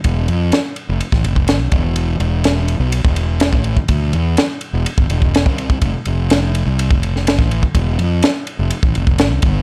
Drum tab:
RD |x-x-x-x-x-x-x-x-|x-x-x-x-x-x-x-x-|x-x-x-x-x-x-x-x-|x-x-x-x-x-x-x-x-|
SD |----o----o--o---|----o-------o---|----o-------o---|----o------oo---|
BD |o--------o-o--o-|---------o---o-o|o--------o-o-o-o|o--------o---o-o|

RD |x-x-x-x-x-x-x-x-|
SD |----o-------o---|
BD |o--------o-o--o-|